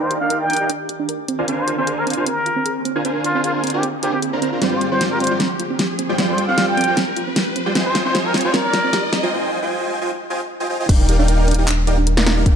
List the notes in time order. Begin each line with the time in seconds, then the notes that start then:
Already playing: D#3 D#4 G4 A#4 D5 F5 G5, riser
0.02 C5
0.11 G4, closed hi-hat
0.21 D4 D#4 A#4 D5 F5 G5
0.30 A#4, closed hi-hat
0.41 G5
0.50 D4, closed hi-hat
0.53 closed hi-hat
0.57 D#4 G4 A#4 D5 F5 G5, closed hi-hat
0.70 D4, closed hi-hat
0.89 G4, closed hi-hat
1.00 D4
1.09 A#4, closed hi-hat
1.28 D3 A#3 C4 G#4, closed hi-hat
1.39 D4 F4 A#4 C5 F5 G#5
1.48 C4 D4 A#4 C5 F5 G#5, closed hi-hat
1.58 C5
1.68 F4, closed hi-hat
1.78 C4 D4 A#4 C5 F5 G#5
1.87 G#4, closed hi-hat
1.98 A#4
2.07 C4, closed hi-hat
2.10 closed hi-hat
2.13 D4 F4 A#4 C5 F5 G#5, closed hi-hat
2.26 C4 A#4, closed hi-hat
2.46 F4, closed hi-hat
2.56 C4
2.65 G#4, closed hi-hat
2.85 C4, closed hi-hat
2.95 D4 F4 A#4 C5 F5 G#5
3.05 C4 D4 A#4 C5 F5 G#5, closed hi-hat
3.24 F4, closed hi-hat
3.35 C4 D4 A#4 C5 F5 G#5
3.44 F4 G#4, closed hi-hat
3.55 F4
3.63 C4, closed hi-hat
3.67 closed hi-hat
3.70 D4 F4 A#4 C5 F5 G#5, closed hi-hat
3.74 G4
3.83 C4, closed hi-hat
4.03 D4 F4 G4 A#4 C5 F5 G#5, closed hi-hat
4.13 C4 G4
4.22 G#4, closed hi-hat
4.33 D4 A#4 C5 F5 A#5
4.42 C4 D4 A#4 C5 F5 A#5, closed hi-hat
4.52 D4 F4 A#4 C5 F5 A#5
4.61 F3 G3 C4 F4 G4 C5 D5 G5, snare, closed hi-hat
4.72 C5
4.81 F4, closed hi-hat
4.92 G3 C4 F4 C5 D5 G5
5.01 G4, snare, closed hi-hat
5.11 A#4
5.20 C4 C5, closed hi-hat
5.24 closed hi-hat
5.27 G3 F4 C5 D5 G5, closed hi-hat
5.40 C4, snare, closed hi-hat
5.60 F4, closed hi-hat
5.70 C4
5.79 G4, snare, closed hi-hat
5.99 C4, closed hi-hat
6.09 G3 F4 C5 D5 G5
6.18 G3 C4 F4 C5 D5 G5, snare, closed hi-hat
6.29 C5
6.38 F4, closed hi-hat
6.48 G3 C4 F4 C5 D5 F5 G5
6.58 G4, snare, closed hi-hat
6.68 G5
6.77 C4, closed hi-hat
6.81 closed hi-hat
6.84 G3 F4 C5 D5 G5, closed hi-hat
6.88 F4
6.97 C4, snare, closed hi-hat
7.17 F4, closed hi-hat
7.27 C4
7.36 G4, snare, closed hi-hat
7.56 C4, closed hi-hat
7.66 G3 F4 C5 D5 G5
7.75 G3 G#3 C4 D#4 F4 C5 D#5 G5 G#5, snare, closed hi-hat
7.86 C5
7.95 F4, snare, closed hi-hat
8.05 C4 F4 C5 D#5 G5 G#5
8.15 G4, snare, closed hi-hat
8.25 A#4
8.34 C4, snare, closed hi-hat
8.38 closed hi-hat
8.41 F4 C5 D#5 G5 G#5, closed hi-hat
8.54 C4 A#4, snare, closed hi-hat
8.73 F4, snare, closed hi-hat
8.84 C4
8.93 G4, snare, closed hi-hat
9.13 C4, snare, closed hi-hat
9.23 F4 C5 D#5 G5 G#5
9.32 F4 C5 D#5 G5 G#5
9.62 F4 C5 D#5 G5 G#5
10.01 F4 C5 D#5 G5 G#5
10.30 F4 C5 D#5 G5 G#5
10.60 F4 C5 D#5 G5 G#5
10.69 F4 C5 D#5 G5 G#5
10.80 F4 C5 D#5 G5 G#5
10.89 D#1 D4 D#4 A#4 D5 F5 G5, kick, closed hi-hat, crash
11.09 G4, closed hi-hat
11.19 D4 D#4 A#4 D5 F5 G5
11.28 A#4, closed hi-hat
11.48 D4, closed hi-hat
11.51 closed hi-hat
11.54 D#4 G4 A#4 D5 F5 G5, closed hi-hat
11.68 D4, clap, closed hi-hat
11.87 D#4 G4 A#4 D5 F5 G5, closed hi-hat
11.97 D4
12.07 A#4, closed hi-hat
12.17 D#4 A#4 D5 F5 A#5, snare
12.26 D4 D#4 A#4 D5 F5 A#5, snare, closed hi-hat
12.37 D#4 G4 A#4 D5 F5 A#5
12.46 D4 D#4 A#4 D5 F5 G5, kick, closed hi-hat